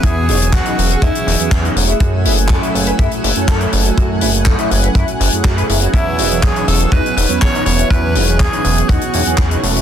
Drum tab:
HH |x-oxxxoxxxoxxxox|x-oxxxoxxxoxxxox|x-oxxxoxxxoxxxox|x-oxxxoxxxoxxxox|
CP |----x-------x---|----x-------x---|----x-------x---|----x-------x---|
SD |--------r-------|----------------|--------r-------|----------------|
BD |o---o---o---o---|o---o---o---o---|o---o---o---o---|o---o---o---o---|

HH |x-oxxxoxxxoxxxox|
CP |----x-------x---|
SD |--------r-------|
BD |o---o---o---o---|